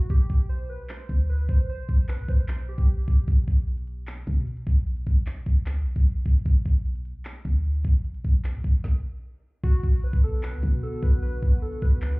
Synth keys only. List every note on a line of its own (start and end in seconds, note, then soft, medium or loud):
0.10 0.28 G4 loud
0.30 0.48 G4 medium
0.49 0.68 C5 medium
0.69 0.88 B4 medium
0.89 1.27 C5 medium
1.29 1.48 B4 medium
1.49 1.68 C5 medium
1.69 1.87 C5 medium
1.89 2.07 C5 medium
2.09 2.27 B4 medium
2.29 2.48 C5 medium
2.49 2.67 C5 medium
2.69 3.24 G4 medium
9.64 9.82 F#4 loud
9.83 10.02 F#4 medium
10.04 10.22 B4 medium
10.24 10.42 A4 medium
10.43 10.80 B4 medium
10.83 11.02 A4 medium
11.03 11.21 B4 medium
11.22 11.41 B4 loud
11.42 11.61 B4 medium
11.62 11.81 A4 medium
11.82 12.01 B4 medium
12.02 12.20 B4 medium